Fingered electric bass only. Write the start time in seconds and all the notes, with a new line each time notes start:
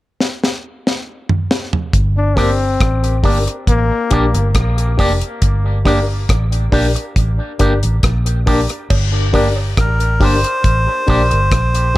1.94 G1
2.81 A1
3.24 G1
3.68 A1
4.11 A#1
4.35 G1
4.55 A#1
4.99 F1
5.42 G1
6.29 A1
6.73 A#1
7.16 A1
7.60 G1
7.83 A1
8.03 A#1
8.91 G1
9.78 A1
10.21 G1
10.65 A1
11.08 A#1
11.32 G1
11.52 A#1